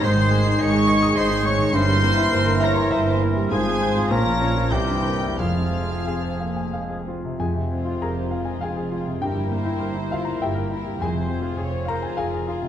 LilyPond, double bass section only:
\new Staff \with { instrumentName = "Double bass section" } { \clef bass \time 3/4 \key f \minor \tempo 4 = 100 aes,,4 aes,,4 aes,,4 | g,,4 g,,4 g,,4 | aes,,4 bes,,4 c,4 | f,,2~ f,,8 r8 |
f,,4 f,,4 f,,4 | g,,4 g,,4 g,,4 | f,,4 f,,4 f,,4 | }